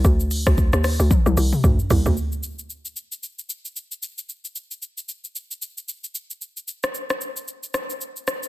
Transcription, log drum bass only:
X:1
M:4/4
L:1/16
Q:"Swing 16ths" 1/4=113
K:Cm
V:1 name="Log drum bass" clef=bass
D,,3 D,,2 E,,2 D,, z C,, C,, z D,, z C,, D,, | z16 | z16 | z16 |]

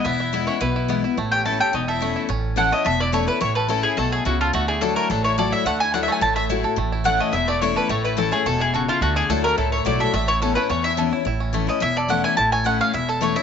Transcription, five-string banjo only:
X:1
M:4/4
L:1/8
Q:1/4=214
K:A
V:1 name="Five-string banjo"
[B,E] E E E E E B, E | A, C E A C A A, E | C2 A A, A E A E | E A C E A, C E A |
A, E D A, D E A E | A, E D A, E A, E A | A, E C A, E A, E A | A, E C A, C E A E |
A, E D A, E A, E A | A, E C A, C E A E | E C A, C E A A, E | E C A, C E A A, E |]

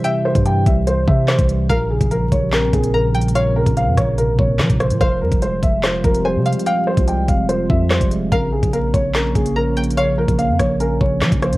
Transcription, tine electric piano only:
X:1
M:4/4
L:1/8
Q:1/4=145
K:Bbdor
V:1 name="Tine electric piano" clef=bass
[C,=E,G,c] E, G,2 c C, E, G, | B,, D, F,2 C B,, D, F, | B,, D, F,2 C, B,, D, F, | F, G, A,2 F F, G, A, |
F, G, A,2 F F, G, A, | D, F, B,2 D D, F, B, | D, F, B,2 D D, F, B, |]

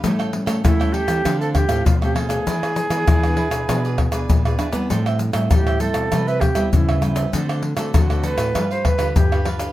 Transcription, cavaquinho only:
X:1
M:4/4
L:1/16
Q:1/4=99
K:Am
V:1 name="Cavaquinho"
[GA^cg] [Acg] z [Acg] [GAcg] [Acg] [GAcg]2 [DA=cf] [Acf] z [Acf]2 [Acf] [DAcf] [Acf] | [E^GBd] [GBd] z [GBd] [EGBd] [GBd] [EGBd]2 [EGBd] [GBd] z [GBd]2 [GBd] [EGBd] [GBd] | [Aceg] [ceg] z [ceg] [Aceg] [ceg] [Aceg]2 [EBce] [Bce] z [Bce]2 [Bce] [EBce] [Bce] | [^FAcd] [Acd] z [Acd] [FAcd] [Acd] [FAcd]2 [DGB=f] [GBf] z [GBf]2 [GBf] [DGBf] [GBf] |]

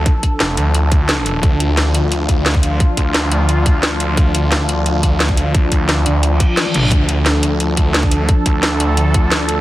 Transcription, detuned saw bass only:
X:1
M:4/4
L:1/8
Q:1/4=175
K:Dm
V:1 name="Detuned saw bass" clef=bass
z2 F,,, D,,4- D,, | D,,2 D,,3 D,,3 | z D,,6- D,, | D,,2 D,,3 D,,3 |
D,,3 D,,2 z2 A,,, | D,,2 D,,3 D,,3 | z D,,6- D,, |]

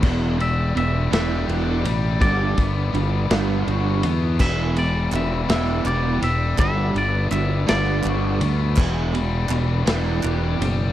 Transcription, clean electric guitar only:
X:1
M:6/8
L:1/8
Q:3/8=55
K:Em
V:1 name="Clean electric guitar"
z e e e3 | d2 z4 | e d e e d e | e d e d3- |
d3 z3 |]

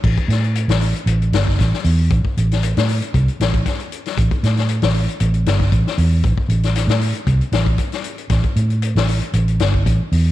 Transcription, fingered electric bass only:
X:1
M:4/4
L:1/16
Q:"Swing 16ths" 1/4=116
K:Am
V:1 name="Fingered electric bass" clef=bass
A,,, z A,,3 A,,,2 z A,,,2 G,,,2 A,,, z E,,2 | A,,, z A,,,3 A,,2 z C,, z A,,,2 z4 | A,,, z A,,3 A,,,2 z A,,,2 G,,,2 A,,, z E,,2 | A,,, z A,,,3 A,,2 z C,, z A,,,2 z4 |
A,,, z A,,3 A,,,2 z A,,,2 G,,,2 A,,, z E,,2 |]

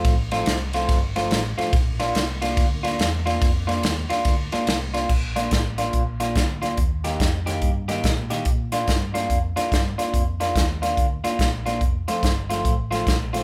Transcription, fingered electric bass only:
X:1
M:4/4
L:1/8
Q:"Swing" 1/4=143
K:Bb
V:1 name="Fingered electric bass" clef=bass
A,,,2 C,,2 G,,,2 A,,, z | B,,,2 C,,2 D,,2 =E,,2 | F,,2 E,, z D,, z C,,2 | B,,,2 A,,,2 B,,,2 D,,2 |
E,,2 F,,2 G,,2 B,,2 | B,,2 G,,2 F,, z G,, z | F,,2 E,,2 D,, z B,,,2 | F,,, z G,,,2 A,,,2 B,,,2 |]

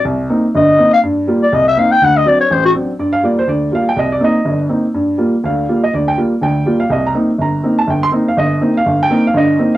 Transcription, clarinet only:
X:1
M:4/4
L:1/8
Q:"Swing" 1/4=245
K:Gm
V:1 name="Clarinet"
z4 e3 f | z3 d e =e f g | ^f e d ^c =c ^F z2 | z8 |
z8 | z8 | z8 | z8 |
z8 | z8 |]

